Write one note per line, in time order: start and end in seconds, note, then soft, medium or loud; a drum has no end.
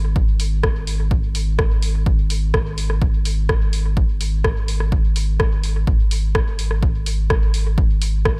0.00 5.85 G#1 medium
0.16 kick loud
0.40 open hi-hat medium
0.63 kick loud
0.63 cross-stick medium
0.87 open hi-hat medium
1.11 kick loud
1.35 open hi-hat medium
1.59 kick loud
1.59 cross-stick medium
1.82 open hi-hat medium
2.06 kick loud
2.30 open hi-hat medium
2.54 kick loud
2.54 cross-stick medium
2.78 open hi-hat medium
2.90 cross-stick soft
3.02 kick loud
3.25 open hi-hat medium
3.49 kick loud
3.49 cross-stick medium
3.73 open hi-hat medium
3.97 kick loud
4.21 open hi-hat medium
4.44 kick loud
4.44 cross-stick medium
4.68 open hi-hat medium
4.80 cross-stick soft
4.92 kick loud
5.16 open hi-hat medium
5.40 kick loud
5.40 cross-stick medium
5.64 open hi-hat medium
5.87 8.40 G#1 medium
5.87 kick loud
6.11 open hi-hat medium
6.35 kick loud
6.35 cross-stick medium
6.59 open hi-hat medium
6.71 cross-stick soft
6.83 kick loud
7.06 open hi-hat medium
7.30 kick loud
7.30 cross-stick medium
7.54 open hi-hat medium
7.78 kick loud
8.02 open hi-hat medium
8.25 kick loud
8.25 cross-stick medium